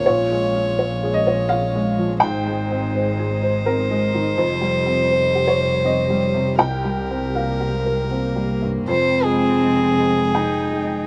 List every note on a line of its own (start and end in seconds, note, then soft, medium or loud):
0.00 2.22 C#4 medium
0.00 2.18 C#5 medium
0.06 2.23 A#1 medium
0.06 2.19 A#2 medium
0.06 4.34 G#3 medium
0.06 4.39 G#3 medium
0.06 2.22 F4 medium
0.06 0.77 C#5 medium
0.31 0.69 G#3 soft
0.55 0.93 F4 soft
0.79 1.17 C#5 medium
1.03 1.41 G#4 medium
1.14 1.48 D#5 medium
1.27 1.65 C#5 medium
1.49 1.89 F4 medium
1.49 2.17 F5 medium
1.75 2.13 G#3 medium
1.98 2.22 F3 soft
2.20 4.40 G#1 medium
2.20 4.35 G#2 medium
2.20 4.39 D#4 medium
2.20 6.56 C5 medium
2.20 6.60 D#5 medium
2.20 3.61 G5 medium
2.48 2.86 G#3 medium
2.71 3.09 C4 medium
2.95 3.33 C5 medium
3.19 3.57 G#4 medium
3.43 3.81 C5 medium
3.66 4.05 C4 medium
3.66 4.34 A#4 medium
3.91 4.29 G#3 medium
4.15 4.39 D#3 soft
4.37 6.62 F1 medium
4.37 6.55 F2 medium
4.37 7.24 G3 medium
4.37 8.88 G4 medium
4.37 5.09 C5 medium
4.61 5.01 G3 medium
4.86 5.26 C4 medium
5.11 5.50 C5 medium
5.35 5.75 G4 soft
5.48 5.82 C#5 medium
5.61 6.00 C5 soft
5.84 6.24 C4 soft
5.84 6.56 D#5 medium
6.10 6.50 G3 soft
6.34 6.60 C3 soft
6.58 8.83 C2 medium
6.58 8.87 C2 medium
6.58 8.63 A#4 medium
6.58 8.88 A#4 medium
6.58 7.31 G5 medium
6.84 7.25 G3 soft
7.10 7.51 C4 soft
7.35 7.75 A#3 medium
7.35 7.76 A#4 soft
7.35 8.08 F5 medium
7.60 8.01 G4 soft
7.73 8.11 G#3 medium
7.86 8.27 A#4 soft
8.11 8.88 A#3 medium
8.11 8.52 C4 soft
8.36 8.77 G3 soft
8.62 8.87 G2 soft
8.87 11.07 F1 medium
8.87 11.04 F2 medium
8.87 11.04 G#3 medium
8.87 10.37 C4 loud
8.87 9.26 C5 medium
8.87 11.07 G5 medium
9.24 9.61 G#3 medium
9.24 11.07 G#4 medium
9.62 9.97 G#3 soft
9.99 10.57 G#3 soft
10.35 11.07 D#4 loud
10.35 10.94 G5 medium
10.72 11.07 G#3 medium